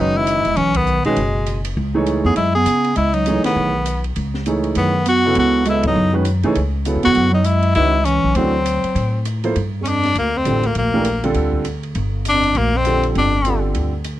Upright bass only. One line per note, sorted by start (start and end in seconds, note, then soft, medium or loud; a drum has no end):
0.00 0.42 F#1 medium
0.46 0.56 E1 medium
0.57 1.02 B1 medium
1.05 muted upright bass stroke soft
1.17 1.74 F#1 medium
1.77 2.22 C#2 medium
2.24 2.35 F2 medium
2.36 2.64 F#2 medium
2.66 2.94 C#3 medium
2.96 3.41 C#2 medium
3.44 muted upright bass stroke soft
3.56 4.13 B1 medium
4.16 4.73 C#2 medium
4.76 5.33 F#2 medium
5.36 5.81 C#2 medium
5.84 5.95 F2 medium
5.96 6.41 F#2 medium
6.44 6.55 C#3 medium
6.56 6.93 C#2 medium
6.96 7.05 D#2 medium
7.06 7.15 E2 medium
7.15 7.72 F#2 medium
7.75 8.20 C#2 medium
8.24 8.34 B1 medium
8.35 8.80 D2 medium
8.84 muted upright bass stroke soft
8.95 9.52 A2 medium
9.56 10.13 G2 medium
10.15 10.43 D2 medium
10.45 10.73 A1 medium
10.75 11.32 A#1 medium
11.35 11.92 D2 medium
11.95 12.52 G1 medium
12.55 13.12 A#1 medium
13.16 13.72 G1 medium
13.76 14.20 D2 medium